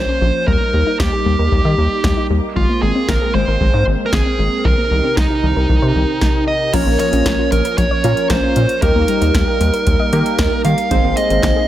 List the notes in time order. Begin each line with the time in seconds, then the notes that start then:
Already playing: F3 A#3 C#4 C5
0.09 C#4
0.21 A#1 F3
0.48 D#2 G3 A#3 D#4 A#4, kick
0.61 A#3
0.74 D#2 G3
0.87 D#4
1.00 D#2 G3 G4, kick, snare
1.13 G4
1.26 D#2 G3
1.39 D#2 A#4
1.52 D#2 G3, kick
1.65 D#3 D#5
1.78 D#2 G3
2.04 D#2 G3, kick, snare
2.17 D#4
2.30 D#2 G3
2.56 G#1 G#3 C4 F4, kick
2.69 A#3
2.82 G#1 G#3 G#4
2.95 C4
3.08 G#1 G#3 A#4, kick, snare
3.21 G#4
3.34 G#1 G#3 C5
3.48 G#1 A#4
3.61 G#1 G#3, kick
3.74 G#2 C5
3.87 G#1 G#3
4.06 A#4
4.13 G#1 G#3 G#4, kick, snare
4.26 C4
4.39 G#1 G#3
4.65 C2 C3 D#3 D#4 G4 A#4, kick
4.78 A#3
4.91 C2 D#3
5.04 C4
5.17 C2 D#3 D#4, kick, snare
5.30 D#4
5.43 C2 D#3
5.56 C2 A#4
5.69 C2 D#3, kick
5.82 C3 C5
5.95 C2 D#3
6.21 kick, snare
6.48 D#5
6.74 A#1 F3 A#3 C#4 F4 A#4 C#5, kick, closed hi-hat, crash
6.87 A#1 A#3
6.99 F3 C#5, closed hi-hat
7.13 A#1 C#4, closed hi-hat
7.26 A#1 F3, kick, snare, closed hi-hat
7.39 F4
7.52 A#1 F3 A#4, closed hi-hat
7.65 A#4, closed hi-hat
7.78 A#1 F3 C#5, kick, closed hi-hat
7.91 C#5
8.04 A#2 F3 A#3 C#4 F4 A#4, closed hi-hat
8.17 closed hi-hat
8.30 A#1 F3 C5, kick, snare, closed hi-hat
8.43 C#4
8.56 A#2 F3, closed hi-hat
8.69 closed hi-hat
8.82 D#2 G3 A#3 D#4 G4 A#4, kick, closed hi-hat
8.95 D#2 A#3
9.08 G3, closed hi-hat
9.21 D#2 D#4, closed hi-hat
9.34 D#2 G3, kick, snare, closed hi-hat
9.47 G4
9.60 D#2 G3, closed hi-hat
9.73 A#4, closed hi-hat
9.87 D#2 G3, kick, closed hi-hat
10.00 D#5
10.13 D#3 G3 A#3 D#4 G4 A#4, closed hi-hat
10.26 closed hi-hat
10.39 D#2 G3, kick, snare, closed hi-hat
10.52 D#4
10.65 D#3 G3 F5, closed hi-hat
10.78 closed hi-hat
10.91 G#1 G#3 C4 D#4 G#4 C5, kick, closed hi-hat
11.04 G#1 A#3
11.17 G#3 D#5, closed hi-hat
11.30 G#1 C4, closed hi-hat
11.43 G#1 G#3, kick, snare, clap, closed hi-hat
11.56 G#4